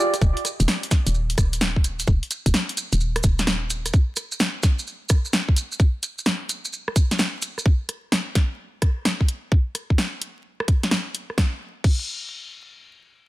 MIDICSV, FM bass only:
0, 0, Header, 1, 2, 480
1, 0, Start_track
1, 0, Tempo, 465116
1, 221, Time_signature, 4, 2, 24, 8
1, 13710, End_track
2, 0, Start_track
2, 0, Title_t, "FM bass"
2, 0, Program_c, 0, 39
2, 221, Note_on_c, 0, 27, 96
2, 345, Note_off_c, 0, 27, 0
2, 618, Note_on_c, 0, 27, 97
2, 683, Note_off_c, 0, 27, 0
2, 1099, Note_on_c, 0, 27, 89
2, 1393, Note_off_c, 0, 27, 0
2, 1421, Note_on_c, 0, 27, 94
2, 2113, Note_off_c, 0, 27, 0
2, 2141, Note_on_c, 0, 27, 98
2, 2265, Note_off_c, 0, 27, 0
2, 2539, Note_on_c, 0, 27, 95
2, 2603, Note_off_c, 0, 27, 0
2, 3019, Note_on_c, 0, 27, 87
2, 3313, Note_off_c, 0, 27, 0
2, 3341, Note_on_c, 0, 27, 91
2, 4033, Note_off_c, 0, 27, 0
2, 13710, End_track
0, 0, End_of_file